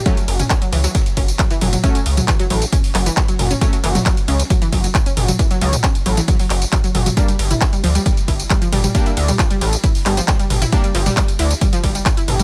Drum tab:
RD |--x---x---x---x-|--x---x---x---x-|--x---x---x---x-|--x---x---x---x-|
HH |xxoxxxoxxxoxxxox|xxoxxxoxxooxxxox|xxoxxxoxxxoxxxox|xxoxxxoxxooxxxox|
TB |xx-xxx-xxx-xxx-x|xx-xxx-xxx-xxx-x|xx-xxx-xxx-xxx-x|xx-xxx-xxx-xxx-x|
CP |----x-------x---|----x-----x-x---|----x-------x---|----x-----x-x---|
T2 |---o----------oo|---o----------oo|---o----------oo|---o----------oo|
BD |o---o---o-o-o---|o---o---o---o---|o---o---o-o-o---|o---o---o---o---|

RD |--x---x---x---x-|--x---x---x---x-|--x---x---x---x-|
HH |xxoxxxoxxxoxxxox|xxoxxxoxxooxxxox|xxoxxxoxxxoxxxox|
TB |xx-xxx-xxx-xxx-x|xx-xxx-xxx-xxx-x|xx-xxx-xxx-xxx-x|
CP |----x-------x---|----x-----x-x---|----x-------x---|
T2 |---o----------oo|---o----------oo|---o----------oo|
BD |o---o---o-o-o---|o---o---o---o---|o---o---o-o-o---|